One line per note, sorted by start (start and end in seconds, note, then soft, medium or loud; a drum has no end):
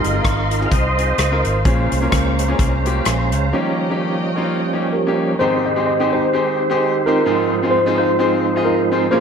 0.00 0.47 G#2 medium
0.00 0.11 G3 soft
0.00 0.11 G#3 soft
0.00 0.68 D#4 medium
0.00 0.68 F4 medium
0.00 0.69 A#4 medium
0.00 1.62 D#5 medium
0.00 3.50 F5 medium
0.00 1.62 C6 medium
0.04 0.22 G1 medium
0.04 closed hi-hat medium
0.13 0.46 C4 medium
0.13 0.46 D#4 medium
0.13 0.46 F4 medium
0.13 0.46 A#4 medium
0.25 0.65 G#1 medium
0.25 kick medium
0.25 cross-stick loud
0.25 closed hi-hat medium
0.51 closed hi-hat medium
0.60 0.84 C4 medium
0.60 0.84 D#4 medium
0.60 0.84 F4 medium
0.60 0.85 G#4 medium
0.60 cross-stick soft
0.66 0.72 F5 medium
0.71 1.11 C2 medium
0.71 1.62 C5 medium
0.71 1.41 D#5 medium
0.71 kick medium
0.71 closed hi-hat medium
0.98 1.18 C4 medium
0.98 1.18 D#4 medium
0.98 1.18 F4 soft
0.98 1.18 G#4 medium
0.98 closed hi-hat medium
1.18 1.41 C#2 medium
1.18 cross-stick medium
1.18 closed hi-hat medium
1.31 1.55 C4 medium
1.31 1.55 D#4 medium
1.31 1.55 F4 medium
1.31 1.55 A#4 medium
1.45 1.62 G#1 medium
1.45 closed hi-hat soft
1.65 1.88 A#1 medium
1.65 2.36 A#2 medium
1.65 3.49 G#3 soft
1.65 1.92 A#3 medium
1.65 3.49 C#4 soft
1.65 1.92 C#4 medium
1.65 1.92 F4 medium
1.65 1.92 G#4 medium
1.65 3.50 C5 medium
1.65 5.37 A#5 medium
1.65 kick loud
1.65 closed hi-hat medium
1.92 2.09 C2 medium
1.92 closed hi-hat medium
2.01 2.34 A#3 medium
2.01 2.34 C#4 medium
2.01 2.34 F4 medium
2.01 2.34 A#4 medium
2.12 2.52 C#2 medium
2.12 kick medium
2.12 cross-stick loud
2.12 closed hi-hat medium
2.39 closed hi-hat medium
2.48 2.72 A#3 medium
2.48 2.72 C#4 medium
2.48 2.72 F4 medium
2.48 2.72 G#4 medium
2.59 2.99 C2 medium
2.59 kick medium
2.59 closed hi-hat medium
2.85 3.05 A#3 medium
2.85 3.05 C#4 medium
2.85 3.06 F4 medium
2.85 3.06 G4 medium
2.85 closed hi-hat medium
3.05 3.33 A#1 medium
3.05 3.32 F5 soft
3.05 3.32 G#5 medium
3.05 cross-stick medium
3.05 closed hi-hat medium
3.32 3.50 C#2 medium
3.32 3.78 C#5 soft
3.32 3.78 F5 medium
3.32 closed hi-hat medium
3.52 4.23 D#3 medium
3.52 5.36 F3 soft
3.52 5.36 G3 soft
3.52 3.80 A#3 medium
3.52 3.80 C#4 medium
3.52 5.36 C#4 medium
3.52 3.80 D#4 medium
3.52 3.80 G4 medium
3.52 5.38 D#5 medium
3.52 5.38 G5 medium
3.90 4.22 A#3 medium
3.90 4.22 C#4 medium
3.90 4.22 D#4 medium
3.90 4.23 G4 medium
4.36 4.59 A#3 medium
4.36 4.60 C#4 medium
4.36 4.60 D#4 medium
4.36 4.60 F4 medium
4.73 4.93 A#3 medium
4.73 4.93 C#4 medium
4.73 4.93 D#4 medium
4.73 4.94 G4 medium
4.93 5.37 C#4 soft
4.93 5.37 G4 soft
4.93 5.41 A#4 medium
5.06 5.30 A#3 medium
5.06 5.30 C#4 medium
5.06 5.30 D#4 medium
5.06 5.31 G4 medium
5.39 6.10 G#2 medium
5.39 7.25 D#3 medium
5.39 7.25 G#3 medium
5.39 5.66 C4 medium
5.39 9.08 C4 medium
5.39 5.67 D#4 medium
5.39 6.13 D#4 medium
5.39 5.67 G4 medium
5.39 7.25 G4 medium
5.39 6.13 G4 medium
5.39 5.67 G#4 medium
5.39 5.67 C5 medium
5.39 9.09 C5 medium
5.66 5.85 D#5 medium
5.76 5.91 C4 medium
5.76 5.91 D#4 medium
5.76 5.91 G4 medium
5.76 5.91 G#4 medium
5.76 5.91 C5 medium
5.86 6.11 D#5 medium
6.00 6.23 C4 medium
6.00 6.23 D#4 medium
6.00 6.23 G4 medium
6.00 6.23 G#4 medium
6.00 6.24 C5 medium
6.13 7.03 D#4 medium
6.13 7.03 G4 medium
6.13 7.09 C5 medium
6.33 6.60 C4 medium
6.33 6.60 D#4 medium
6.33 6.60 G4 medium
6.33 6.60 G#4 medium
6.33 6.61 C5 medium
6.70 6.93 C4 medium
6.70 6.93 D#4 medium
6.70 6.93 G4 medium
6.70 6.93 G#4 medium
6.70 6.93 C5 medium
7.06 7.20 C4 medium
7.06 7.20 D#4 medium
7.06 7.96 D#4 medium
7.06 7.96 F4 medium
7.06 7.20 G4 medium
7.06 7.20 G#4 medium
7.06 7.74 A#4 loud
7.06 7.20 C5 medium
7.26 7.96 G#2 medium
7.26 9.10 G#2 medium
7.26 9.20 F3 medium
7.26 9.20 G#3 medium
7.26 7.52 C4 medium
7.26 9.10 D#4 medium
7.26 7.53 D#4 medium
7.26 7.53 F4 medium
7.26 7.53 G#4 medium
7.26 7.53 C5 medium
7.63 7.77 C4 medium
7.63 7.77 D#4 medium
7.63 7.77 F4 medium
7.63 7.78 G#4 medium
7.63 7.78 C5 medium
7.71 7.97 C5 medium
7.86 8.09 C4 medium
7.86 8.09 D#4 medium
7.86 8.09 F4 medium
7.86 8.10 G#4 medium
7.86 8.10 C5 medium
7.98 8.65 D#4 medium
7.98 8.65 F4 medium
7.98 8.67 C5 loud
8.19 8.45 C4 medium
8.19 8.46 D#4 medium
8.19 8.46 F4 medium
8.19 8.46 G#4 medium
8.19 8.46 C5 medium
8.56 8.79 C4 medium
8.56 8.79 D#4 medium
8.56 8.79 F4 medium
8.56 8.79 G#4 medium
8.56 8.79 D#5 medium
8.65 9.09 D#4 medium
8.65 9.09 F4 medium
8.65 9.13 A#4 medium
8.92 9.05 C4 medium
8.92 9.05 D#4 medium
8.92 9.05 F4 medium
8.92 9.05 G#4 medium
8.92 9.05 C5 medium
9.11 9.20 A#2 medium
9.11 9.20 A#3 medium
9.11 9.20 C#4 medium
9.11 9.20 F4 medium
9.11 9.20 G#4 medium
9.11 9.20 A#4 medium
9.11 9.20 C5 loud